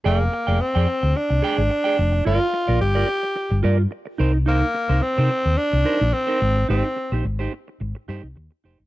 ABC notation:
X:1
M:4/4
L:1/16
Q:1/4=108
K:Fdor
V:1 name="Clean electric guitar"
[Adg] z2 [Adg] z [Adg] z4 [Adg] z2 [Adg] z2 | [FBd] z2 [FBd] z [FBd] z4 [FBd] z3 [EBc] z | [EBc] z2 [EBc] z [EBc] z4 [EBc] z2 [EBc] z2 | [EGc] z2 [EGc] z [EGc] z4 [EGc] z3 [EGc] z |]
V:2 name="Tenor saxophone"
B,4 C4 D8 | F4 G6 z6 | B,4 C4 D4 C4 | C4 z12 |]
V:3 name="Fingered electric bass" clef=bass
F,,,2 z F,,, z F,, z D,, z C,, z A,,, z2 F,,,2 | G,,, z2 B,,, G,,,2 z3 G,,, G,,2 z2 C,,2- | C,,2 z C,, z C, z E,, z C,, z B,,, z2 A,,,2 | A,,, z2 B,,, A,,,2 z2 A,,, z G,, C,, E,, z F,,, G,,, |]